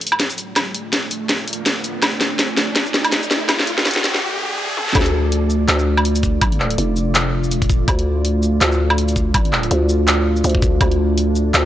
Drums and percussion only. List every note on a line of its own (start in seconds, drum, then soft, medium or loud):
0.01 closed hi-hat soft
0.07 closed hi-hat medium
0.12 low woodblock medium
0.20 kick medium
0.20 snare medium
0.20 closed hi-hat medium
0.30 shaker medium
0.38 closed hi-hat soft
0.38 shaker medium
0.56 kick loud
0.56 snare medium
0.56 closed hi-hat medium
0.56 low woodblock medium
0.75 closed hi-hat medium
0.93 kick loud
0.93 snare medium
0.93 closed hi-hat medium
1.11 closed hi-hat medium
1.11 shaker medium
1.29 kick medium
1.29 snare medium
1.29 closed hi-hat medium
1.48 closed hi-hat medium
1.53 closed hi-hat medium
1.66 kick medium
1.66 snare medium
1.66 closed hi-hat medium
1.66 shaker medium
1.84 closed hi-hat soft
1.84 shaker medium
2.02 kick loud
2.02 snare medium
2.02 closed hi-hat medium
2.02 low woodblock medium
2.21 snare medium
2.21 closed hi-hat medium
2.39 kick loud
2.39 snare medium
2.39 closed hi-hat medium
2.57 snare medium
2.57 closed hi-hat medium
2.57 shaker medium
2.76 kick loud
2.76 snare medium
2.76 closed hi-hat medium
2.86 shaker soft
2.94 snare medium
2.94 closed hi-hat medium
3.05 closed hi-hat medium
3.05 low woodblock medium
3.12 kick loud
3.12 snare medium
3.12 closed hi-hat medium
3.23 shaker medium
3.31 snare medium
3.31 closed hi-hat soft
3.31 shaker medium
3.49 kick loud
3.49 snare medium
3.49 closed hi-hat medium
3.49 low woodblock medium
3.60 snare medium
3.67 closed hi-hat medium
3.78 snare medium
3.85 kick loud
3.85 snare loud
3.85 closed hi-hat soft
3.88 closed hi-hat soft
3.91 closed hi-hat medium
3.94 snare medium
3.94 closed hi-hat medium
4.04 snare loud
4.04 closed hi-hat medium
4.04 shaker medium
4.15 snare medium
4.77 high tom medium
4.88 snare soft
4.92 kick loud
4.92 snare soft
4.95 snare medium
4.95 closed hi-hat medium
4.95 low woodblock medium
5.01 snare medium
5.06 closed hi-hat soft
5.32 closed hi-hat medium
5.50 shaker medium
5.68 clap loud
5.68 closed hi-hat medium
5.79 shaker soft
5.97 low woodblock medium
6.05 closed hi-hat medium
6.16 closed hi-hat soft
6.16 shaker medium
6.23 kick medium
6.23 shaker medium
6.41 kick loud
6.41 closed hi-hat medium
6.41 low woodblock medium
6.52 closed hi-hat soft
6.60 clap medium
6.71 closed hi-hat soft
6.78 closed hi-hat medium
6.97 shaker medium
7.15 clap loud
7.15 closed hi-hat medium
7.44 shaker soft
7.51 closed hi-hat medium
7.51 shaker medium
7.62 kick medium
7.62 closed hi-hat soft
7.70 kick loud
7.70 shaker medium
7.88 kick loud
7.88 closed hi-hat medium
7.88 low woodblock medium
7.99 closed hi-hat soft
8.25 closed hi-hat medium
8.43 shaker medium
8.61 clap loud
8.61 closed hi-hat medium
8.72 shaker soft
8.90 low woodblock medium
8.98 closed hi-hat medium
9.09 closed hi-hat soft
9.09 shaker medium
9.16 kick medium
9.16 shaker medium
9.34 kick loud
9.34 closed hi-hat medium
9.34 low woodblock medium
9.45 closed hi-hat soft
9.53 clap medium
9.63 closed hi-hat soft
9.71 closed hi-hat medium
9.89 shaker medium
10.08 clap loud
10.08 closed hi-hat medium
10.37 shaker soft
10.44 closed hi-hat medium
10.44 shaker medium
10.49 closed hi-hat soft
10.55 kick medium
10.62 kick loud
10.62 shaker medium
10.81 kick loud
10.81 closed hi-hat medium
10.81 low woodblock medium
10.92 closed hi-hat soft
11.18 closed hi-hat medium
11.36 shaker medium
11.54 clap loud
11.54 closed hi-hat medium